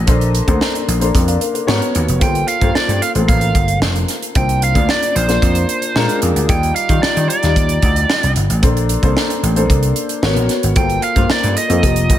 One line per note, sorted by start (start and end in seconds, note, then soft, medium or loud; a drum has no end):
0.06 0.40 A#1 medium
0.06 0.33 A#3 medium
0.06 0.34 D4 medium
0.06 0.34 A4 medium
0.06 0.34 C5 medium
0.06 kick loud
0.06 closed hi-hat medium
0.21 closed hi-hat soft
0.35 closed hi-hat medium
0.47 0.58 D2 medium
0.47 0.82 A#3 medium
0.47 0.83 D4 medium
0.47 0.83 A4 medium
0.47 0.83 C5 medium
0.47 kick medium
0.47 closed hi-hat medium
0.61 snare medium
0.75 closed hi-hat soft
0.88 1.09 A#1 medium
0.88 closed hi-hat medium
1.00 1.67 A#3 medium
1.00 1.68 D4 medium
1.00 1.13 A4 medium
1.00 1.12 C5 medium
1.00 closed hi-hat soft
1.14 1.36 F2 medium
1.14 1.27 A4 soft
1.14 1.27 C5 medium
1.14 kick medium
1.14 closed hi-hat medium
1.28 1.38 D5 medium
1.28 1.41 F5 medium
1.28 closed hi-hat medium
1.40 1.53 A#4 medium
1.40 1.53 D5 medium
1.40 closed hi-hat medium
1.54 1.80 A4 soft
1.54 1.80 C5 medium
1.54 closed hi-hat soft
1.67 1.79 G#2 medium
1.67 2.10 B3 medium
1.67 2.10 F#4 medium
1.67 2.10 A#4 medium
1.67 2.10 C#5 loud
1.67 snare loud
1.82 closed hi-hat soft
1.95 2.06 D#2 medium
1.95 closed hi-hat medium
2.08 2.19 F1 medium
2.08 closed hi-hat soft
2.20 2.43 G1 medium
2.20 2.47 A#3 medium
2.20 2.47 F4 medium
2.20 2.47 A4 medium
2.20 2.48 C5 medium
2.20 2.48 G5 medium
2.20 kick loud
2.20 closed hi-hat medium
2.35 closed hi-hat soft
2.48 2.76 F5 medium
2.48 closed hi-hat medium
2.60 2.72 G2 medium
2.60 2.96 A#3 medium
2.60 2.96 F4 medium
2.60 2.96 A4 medium
2.60 2.97 C5 medium
2.60 kick medium
2.60 closed hi-hat soft
2.75 3.02 D5 medium
2.75 muted slap bass stroke soft
2.75 snare loud
2.88 2.99 G2 medium
2.88 closed hi-hat soft
3.02 3.09 F5 medium
3.02 closed hi-hat medium
3.14 3.26 A1 medium
3.14 3.21 A3 medium
3.14 3.85 F4 medium
3.14 3.85 A4 medium
3.14 3.85 C5 medium
3.14 closed hi-hat soft
3.20 3.88 A#3 medium
3.29 3.50 A1 medium
3.29 3.78 F5 medium
3.29 kick medium
3.29 closed hi-hat medium
3.41 closed hi-hat medium
3.55 3.76 G1 medium
3.55 kick medium
3.55 closed hi-hat medium
3.68 closed hi-hat soft
3.82 4.03 F1 medium
3.82 snare loud
3.96 closed hi-hat soft
4.08 snare soft
4.08 closed hi-hat medium
4.22 closed hi-hat soft
4.35 4.75 C2 medium
4.35 4.61 A#3 medium
4.35 4.62 D4 medium
4.35 4.62 F4 medium
4.35 4.62 C5 medium
4.35 4.63 G5 medium
4.35 kick loud
4.35 closed hi-hat medium
4.49 closed hi-hat soft
4.62 4.88 F5 medium
4.62 closed hi-hat medium
4.75 4.86 D2 medium
4.75 5.10 A#3 medium
4.75 5.10 D4 medium
4.75 5.10 F4 medium
4.75 5.11 D5 medium
4.75 kick medium
4.75 closed hi-hat soft
4.89 5.16 D5 medium
4.89 snare medium
5.03 closed hi-hat soft
5.16 5.37 A#1 medium
5.16 6.19 C5 medium
5.16 closed hi-hat medium
5.28 5.95 A#3 medium
5.28 5.94 D4 medium
5.28 5.95 F4 medium
5.28 5.96 C5 medium
5.28 snare soft
5.28 closed hi-hat soft
5.42 5.64 F2 medium
5.42 kick medium
5.42 closed hi-hat medium
5.55 closed hi-hat medium
5.69 closed hi-hat medium
5.82 closed hi-hat soft
5.95 6.06 A#2 medium
5.95 6.38 G#3 medium
5.95 6.38 D4 medium
5.95 6.39 F4 medium
5.95 6.39 A#4 medium
5.95 snare loud
6.09 closed hi-hat soft
6.22 6.33 F2 medium
6.22 closed hi-hat medium
6.36 6.46 D2 medium
6.36 closed hi-hat soft
6.48 6.70 D#2 medium
6.48 6.75 G3 medium
6.48 6.75 D#4 medium
6.48 6.75 F4 medium
6.48 6.76 D5 medium
6.48 6.74 G5 medium
6.48 kick loud
6.48 closed hi-hat medium
6.63 closed hi-hat soft
6.76 7.00 F5 medium
6.76 closed hi-hat medium
6.89 7.00 D#3 medium
6.89 7.24 G3 medium
6.89 7.24 D#4 medium
6.89 7.24 F4 medium
6.89 7.24 D5 medium
6.89 kick medium
6.89 closed hi-hat soft
7.02 7.28 D5 medium
7.02 muted slap bass stroke soft
7.02 snare loud
7.17 7.27 D#3 medium
7.17 closed hi-hat soft
7.29 8.32 D5 medium
7.29 closed hi-hat medium
7.42 7.54 D#2 medium
7.42 8.12 G3 medium
7.42 8.13 D#4 medium
7.42 8.13 F4 medium
7.42 8.13 D5 medium
7.42 snare soft
7.42 closed hi-hat soft
7.56 7.77 D#2 medium
7.56 kick medium
7.56 closed hi-hat medium
7.69 closed hi-hat medium
7.82 8.04 D2 medium
7.82 kick medium
7.82 closed hi-hat medium
7.96 closed hi-hat soft
8.10 snare loud
8.23 8.34 C2 medium
8.23 closed hi-hat soft
8.36 8.47 G1 medium
8.36 closed hi-hat medium
8.49 8.60 A1 medium
8.49 closed hi-hat soft
8.62 8.95 A#1 medium
8.62 8.89 A#3 medium
8.62 8.89 D4 medium
8.62 8.89 A4 medium
8.62 8.89 C5 medium
8.62 kick loud
8.62 closed hi-hat medium
8.77 closed hi-hat soft
8.89 closed hi-hat medium
9.02 9.13 C2 medium
9.02 9.38 A#3 medium
9.02 9.38 D4 medium
9.02 9.38 A4 medium
9.02 9.38 C5 medium
9.02 kick medium
9.02 closed hi-hat soft
9.17 snare medium
9.30 closed hi-hat soft
9.43 9.64 A1 medium
9.43 closed hi-hat medium
9.56 10.21 A#3 medium
9.56 10.23 D4 medium
9.56 10.23 A4 medium
9.56 10.23 C5 medium
9.56 closed hi-hat soft
9.70 9.91 C2 medium
9.70 kick medium
9.70 closed hi-hat medium
9.83 closed hi-hat medium
9.96 closed hi-hat medium
10.09 closed hi-hat soft
10.22 10.36 G#1 medium
10.22 10.29 A#3 medium
10.22 10.65 F#4 medium
10.22 10.66 A#4 medium
10.22 10.66 C#5 medium
10.22 snare loud
10.29 10.69 B3 medium
10.36 10.47 A#1 medium
10.36 closed hi-hat soft
10.49 snare soft
10.49 closed hi-hat medium
10.63 10.74 G#1 medium
10.63 closed hi-hat soft
10.75 10.97 G1 medium
10.75 11.02 A#3 medium
10.75 11.02 F4 medium
10.75 11.02 A4 medium
10.75 11.03 C5 medium
10.75 11.01 G5 loud
10.75 kick loud
10.75 closed hi-hat medium
10.90 closed hi-hat soft
11.02 11.31 F5 medium
11.02 closed hi-hat medium
11.16 11.27 G2 medium
11.16 11.51 A#3 medium
11.16 11.51 F4 medium
11.16 11.51 A4 medium
11.16 11.51 C5 medium
11.16 kick medium
11.16 closed hi-hat soft
11.30 11.57 D5 medium
11.30 muted slap bass stroke soft
11.30 snare loud
11.44 11.54 G2 medium
11.44 closed hi-hat soft
11.57 12.19 D#5 medium
11.57 closed hi-hat medium
11.69 11.80 F2 medium
11.69 11.80 A#3 medium
11.69 11.81 F4 medium
11.69 11.83 A4 medium
11.69 11.83 C5 medium
11.69 closed hi-hat soft
11.82 12.04 F1 medium
11.82 12.19 A#3 medium
11.82 12.19 F4 medium
11.82 12.19 G4 medium
11.82 12.19 D#5 medium
11.82 kick medium
11.82 closed hi-hat medium
11.96 closed hi-hat medium
12.10 12.19 F1 medium
12.10 kick medium
12.10 closed hi-hat medium